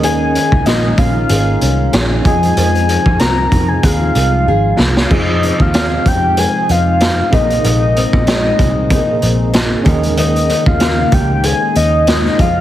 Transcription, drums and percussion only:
0.03 closed hi-hat
0.35 closed hi-hat
0.52 kick
0.66 snare, closed hi-hat
0.98 kick, closed hi-hat
1.29 closed hi-hat
1.61 closed hi-hat
1.93 snare, closed hi-hat
2.25 kick, closed hi-hat
2.43 closed hi-hat
2.57 closed hi-hat
2.75 closed hi-hat
2.89 closed hi-hat
3.06 kick
3.19 snare, closed hi-hat
3.52 kick, closed hi-hat
3.83 kick, closed hi-hat
4.15 closed hi-hat
4.79 snare
4.97 snare
5.11 kick, crash
5.43 closed hi-hat
5.60 kick
5.74 snare, closed hi-hat
6.06 kick, closed hi-hat
6.37 closed hi-hat
6.69 closed hi-hat
7.00 snare, closed hi-hat
7.32 kick, closed hi-hat
7.50 closed hi-hat
7.64 closed hi-hat
7.96 closed hi-hat
8.13 kick
8.27 snare, closed hi-hat
8.59 kick, closed hi-hat
8.90 kick, closed hi-hat
9.22 closed hi-hat
9.53 snare, closed hi-hat
9.86 kick, closed hi-hat
10.03 closed hi-hat
10.17 closed hi-hat
10.36 closed hi-hat
10.49 closed hi-hat
10.66 kick
10.80 snare, closed hi-hat
11.12 kick, closed hi-hat
11.43 closed hi-hat
11.75 closed hi-hat
12.07 snare, closed hi-hat
12.25 snare
12.39 kick, closed hi-hat

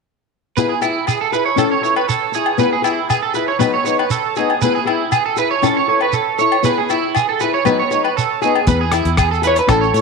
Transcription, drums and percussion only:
0.57 shekere
0.82 low agogo, shekere
1.07 low agogo, shekere
1.33 shekere
1.58 low agogo, shekere
1.84 shekere
1.96 low agogo
2.09 shekere
2.34 shekere
2.46 low agogo
2.58 shekere
2.84 low agogo, shekere
3.10 low agogo, shekere
3.34 shekere
3.61 low agogo, shekere
3.86 shekere
3.99 low agogo
4.10 shekere
4.36 shekere
4.50 low agogo
4.62 shekere
4.87 low agogo
5.12 low agogo, shekere
5.37 shekere
5.63 low agogo, shekere
6.01 low agogo
6.13 shekere
6.39 shekere
6.52 low agogo
6.64 shekere
6.90 low agogo, shekere
7.15 low agogo, shekere
7.40 shekere
7.65 low agogo, shekere
7.91 shekere
8.05 low agogo
8.18 shekere
8.42 shekere
8.55 low agogo
8.67 kick, closed hi-hat, shekere
8.92 cross-stick, closed hi-hat, low agogo, shekere
9.05 closed hi-hat
9.17 kick, cross-stick, closed hi-hat, low agogo, shekere
9.33 shekere
9.43 closed hi-hat, shekere
9.56 closed hi-hat, shekere
9.69 kick, cross-stick, closed hi-hat, low agogo, shekere
9.83 shekere
9.94 closed hi-hat, shekere

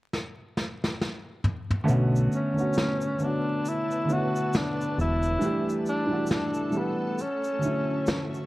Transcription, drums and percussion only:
0.13 snare
0.57 snare
0.84 snare
1.01 snare
1.44 mid tom
1.70 mid tom
1.88 closed hi-hat, shaker
2.16 shaker
2.32 shaker
2.58 shaker
2.73 closed hi-hat, shaker
2.78 snare
3.01 shaker
3.19 shaker
3.65 closed hi-hat, shaker
3.91 shaker
4.09 shaker
4.36 shaker
4.53 snare, closed hi-hat, shaker
4.81 shaker
4.99 shaker
5.23 shaker
5.42 closed hi-hat, shaker
5.69 shaker
5.86 shaker
6.27 closed hi-hat, shaker
6.31 snare
6.54 shaker
6.72 shaker
7.18 closed hi-hat, shaker
7.44 shaker
7.62 shaker
8.07 snare, closed hi-hat, shaker
8.34 shaker

